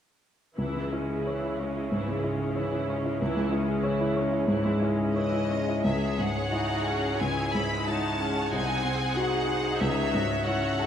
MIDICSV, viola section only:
0, 0, Header, 1, 2, 480
1, 0, Start_track
1, 0, Key_signature, 4, "minor"
1, 0, Tempo, 667408
1, 411, Time_signature, 4, 2, 24, 8
1, 1369, Tempo, 645856
1, 3289, Tempo, 677201
1, 5689, Tempo, 645856
1, 7913, End_track
2, 0, Start_track
2, 0, Title_t, "Viola section"
2, 0, Program_c, 0, 48
2, 412, Note_on_c, 0, 52, 23
2, 412, Note_on_c, 0, 64, 27
2, 637, Note_off_c, 0, 52, 0
2, 637, Note_off_c, 0, 64, 0
2, 655, Note_on_c, 0, 56, 22
2, 656, Note_on_c, 0, 61, 23
2, 896, Note_off_c, 0, 56, 0
2, 897, Note_off_c, 0, 61, 0
2, 899, Note_on_c, 0, 52, 26
2, 899, Note_on_c, 0, 64, 22
2, 1136, Note_off_c, 0, 52, 0
2, 1136, Note_off_c, 0, 64, 0
2, 1142, Note_on_c, 0, 56, 24
2, 1142, Note_on_c, 0, 61, 24
2, 1373, Note_on_c, 0, 64, 27
2, 1374, Note_off_c, 0, 56, 0
2, 1374, Note_off_c, 0, 61, 0
2, 1377, Note_on_c, 0, 52, 26
2, 1597, Note_off_c, 0, 64, 0
2, 1599, Note_off_c, 0, 52, 0
2, 1614, Note_on_c, 0, 56, 23
2, 1617, Note_on_c, 0, 61, 23
2, 1851, Note_on_c, 0, 52, 26
2, 1853, Note_on_c, 0, 64, 26
2, 1855, Note_off_c, 0, 56, 0
2, 1857, Note_off_c, 0, 61, 0
2, 2095, Note_off_c, 0, 52, 0
2, 2096, Note_off_c, 0, 64, 0
2, 2100, Note_on_c, 0, 56, 26
2, 2101, Note_on_c, 0, 61, 26
2, 2336, Note_on_c, 0, 52, 34
2, 2337, Note_off_c, 0, 56, 0
2, 2337, Note_off_c, 0, 61, 0
2, 2339, Note_on_c, 0, 64, 36
2, 2555, Note_off_c, 0, 52, 0
2, 2557, Note_off_c, 0, 64, 0
2, 2570, Note_on_c, 0, 61, 32
2, 2572, Note_on_c, 0, 56, 31
2, 2809, Note_off_c, 0, 61, 0
2, 2810, Note_off_c, 0, 56, 0
2, 2810, Note_on_c, 0, 52, 35
2, 2811, Note_on_c, 0, 64, 36
2, 3048, Note_on_c, 0, 56, 35
2, 3048, Note_on_c, 0, 61, 35
2, 3049, Note_off_c, 0, 52, 0
2, 3050, Note_off_c, 0, 64, 0
2, 3288, Note_on_c, 0, 52, 38
2, 3288, Note_on_c, 0, 64, 39
2, 3290, Note_off_c, 0, 56, 0
2, 3290, Note_off_c, 0, 61, 0
2, 3507, Note_off_c, 0, 52, 0
2, 3508, Note_off_c, 0, 64, 0
2, 3523, Note_on_c, 0, 56, 31
2, 3524, Note_on_c, 0, 61, 32
2, 3762, Note_on_c, 0, 52, 31
2, 3763, Note_on_c, 0, 64, 32
2, 3764, Note_off_c, 0, 56, 0
2, 3764, Note_off_c, 0, 61, 0
2, 4010, Note_on_c, 0, 56, 28
2, 4011, Note_on_c, 0, 61, 27
2, 4013, Note_off_c, 0, 52, 0
2, 4014, Note_off_c, 0, 64, 0
2, 4257, Note_off_c, 0, 56, 0
2, 4261, Note_off_c, 0, 61, 0
2, 4264, Note_on_c, 0, 68, 31
2, 4265, Note_on_c, 0, 56, 30
2, 4710, Note_off_c, 0, 56, 0
2, 4710, Note_off_c, 0, 68, 0
2, 4735, Note_on_c, 0, 63, 35
2, 4737, Note_on_c, 0, 66, 32
2, 4971, Note_on_c, 0, 61, 36
2, 4974, Note_off_c, 0, 63, 0
2, 5206, Note_off_c, 0, 66, 0
2, 5209, Note_on_c, 0, 64, 35
2, 5211, Note_on_c, 0, 56, 37
2, 5213, Note_off_c, 0, 61, 0
2, 5683, Note_on_c, 0, 63, 32
2, 5687, Note_off_c, 0, 64, 0
2, 5928, Note_on_c, 0, 61, 35
2, 5930, Note_off_c, 0, 63, 0
2, 6164, Note_on_c, 0, 60, 35
2, 6166, Note_on_c, 0, 63, 33
2, 6167, Note_off_c, 0, 61, 0
2, 6172, Note_off_c, 0, 56, 0
2, 6405, Note_off_c, 0, 63, 0
2, 6408, Note_on_c, 0, 68, 34
2, 6638, Note_off_c, 0, 60, 0
2, 6651, Note_on_c, 0, 63, 34
2, 7127, Note_off_c, 0, 68, 0
2, 7136, Note_on_c, 0, 68, 39
2, 7366, Note_off_c, 0, 68, 0
2, 7372, Note_on_c, 0, 66, 32
2, 7605, Note_on_c, 0, 61, 33
2, 7606, Note_off_c, 0, 63, 0
2, 7913, Note_off_c, 0, 61, 0
2, 7913, Note_off_c, 0, 66, 0
2, 7913, End_track
0, 0, End_of_file